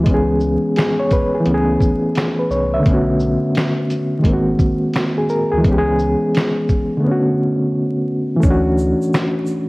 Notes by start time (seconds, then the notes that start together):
0.00 E3 G#3
0.06 C#2 B3, kick, closed hi-hat
0.11 C#4 G#4
0.40 shaker
0.76 G#4, finger snap, snare, closed hi-hat
1.00 C#5
1.11 B4, kick, closed hi-hat, shaker
1.35 G#4
1.40 E3 A3
1.46 C#2 B3, closed hi-hat
1.50 C#4 G#4
1.81 kick, shaker
2.15 finger snap, snare, closed hi-hat
2.39 B4
2.50 C2 C#5, shaker
2.74 E5
2.80 D3 A3
2.86 B1 B3, kick, closed hi-hat
2.90 C#4 F#4
3.20 shaker
3.55 finger snap, snare, closed hi-hat
3.90 closed hi-hat, shaker
4.19 D#3 G#3
4.24 G#1 A#3, kick, closed hi-hat
4.30 C4 F#4
4.59 kick, shaker
4.94 finger snap, snare, closed hi-hat
5.18 G#4
5.29 A#4, shaker
5.52 D2 G#4
5.58 E3 G#3
5.64 C#2 B3 C#4, kick, closed hi-hat
5.72 G4
5.78 G#4
5.99 shaker
6.35 finger snap, snare, closed hi-hat
6.69 kick, shaker
6.97 D3 A3
7.04 B3 C#4
7.11 F#4
8.36 E3 A3
8.43 D2 C#4 D4, kick, shaker
8.50 F#4
8.78 shaker
9.02 shaker
9.14 finger snap, snare, shaker
9.47 shaker